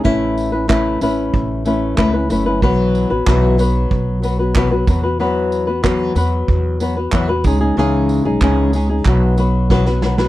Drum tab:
TB |--x---x---x---x-|--x---x---x---x-|--x---x---x---x-|--x---x---x-----|
CP |----x-------x---|----x-------x---|----x-------x---|----x---x-------|
SD |----------------|----------------|----------------|------------oooo|
BD |o---o---o---o---|o---o---o---o-o-|----o---o---o-o-|----o---o---o---|